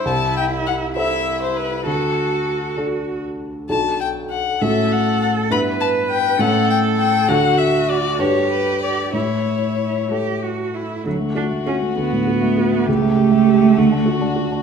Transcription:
X:1
M:6/8
L:1/16
Q:3/8=66
K:Dmix
V:1 name="Violin"
a2 g2 f2 e3 c B2 | A6 z6 | [K:D] a2 g2 f2 e2 f2 f2 | b2 a2 g2 f2 g2 g2 |
f2 e2 d2 c2 B2 d2 | c6 z6 | F12 | G6 F6 |]
V:2 name="Cello"
E6 E6 | F8- F z3 | [K:D] z6 A6 | B6 A6 |
F6 G6 | E6 G2 F2 E2 | F,2 D2 C2 B,6 | A,12 |]
V:3 name="Grand piano"
C,,6 [EAc]6 | D,,6 [DFA]6 | [K:D] [B,,,DFA]6 [A,,CFA]6 | [G,,B,EB]6 [A,,CEA]6 |
[D,,DFA]6 [G,,DGB]6 | A,,6 [A,EA]6 | D,, A, F A, F A, D,, A,, F A, F A, | C,, A, G A, G A, D,, D F D F D |]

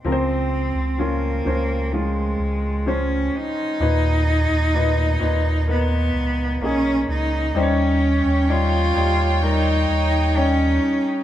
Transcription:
X:1
M:4/4
L:1/16
Q:1/4=64
K:Db
V:1 name="String section"
z16 | z16 | [Ed=g]16 |]
V:2 name="Grand piano"
[F,CBc]4 [F,DF]2 [F,Dc]2 [F,DF]4 [F,Dc]4 | [B,,E_c]4 [B,,Ec]2 [B,,Ec]2 [EBc]4 [B,EA]4 | [=G,Ecd]4 [G,Ed]2 [G,E=G]2 [G,EB]4 [G,Ed]4 |]
V:3 name="Grand piano" clef=bass
D,6 z8 z2 | E,6 z8 z2 | E,6 z8 z2 |]
V:4 name="Cello"
C4 B,4 A,4 D2 E2- | E8 _C4 D2 E2 | D4 F4 E4 D3 z |]
V:5 name="Sub bass" clef=bass
D,,3 D,,3 D,,4 D,,4 z2 | E,,3 E,,3 E,,4 D,,2 _C,,2 D,,2 | E,,3 E,,3 E,,4 E,,4 z2 |]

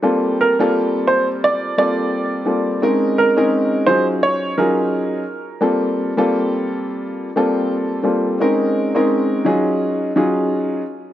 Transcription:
X:1
M:4/4
L:1/16
Q:"Swing 16ths" 1/4=86
K:Gm
V:1 name="Upright piano"
z2 B2 z2 c z d2 d6 | z2 B2 z2 c z _d2 B6 | z16 | z16 |]
V:2 name="Upright piano"
[G,B,CFA]3 [G,B,CFA]6 z [G,B,CFA]4 [G,B,CFA]2 | [_A,C_DEB]3 [A,CDEB]3 [_G,DEF_A]4 [G,DEFA]4 z2 | [G,B,CFA]3 [G,B,CFA]6 z [G,B,CFA]4 [G,B,CFA]2 | [_A,C_DEB]3 [A,CDEB]3 [_G,DEF_A]4 [G,DEFA]4 z2 |]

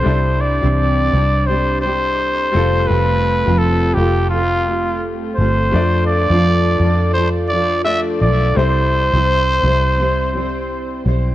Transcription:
X:1
M:4/4
L:1/16
Q:"Swing 16ths" 1/4=85
K:C
V:1 name="Trumpet"
c2 d6 c2 c6 | B4 A2 G2 F4 z2 c2- | c2 d6 c2 d2 e2 d2 | c12- c2 z2 |]
V:2 name="Upright piano"
[G,DEc]12- [G,DEc]2 [G,CFA]2- | [G,CFA]12- [G,CFA]2 z2 | [A,DFd]12 [A,DFd]4 | [G,CEc]16 |]
V:3 name="Steel-string acoustic guitar"
[G,CDG]3 [C,E,G,CDG]3 [G,CDG]2 [G,CDG]2 [G,CDG]4 [A,CFG]2 | [A,CFG]3 [F,A,CFG]3 [A,CFG]2 [A,CFG]2 [A,CFG]4 [A,CFG]2 | [F,DFA]3 [F,DFA]3 [F,DFA]2 [F,DFA]2 [F,DFA]4 [F,DFA]2 | [G,CEc]3 [C,G,CEc]3 [G,CEc]2 [G,CEc]2 [G,CEc]4 [G,CEc]2 |]
V:4 name="Fingered electric bass" clef=bass
C,,3 C,,3 C,,8 F,,,2 | F,,,3 F,,,3 F,,,8 G,,,2 | F,,3 F,,3 F,,8 B,,,2 | C,,3 C,,3 C,,8 B,,,2 |]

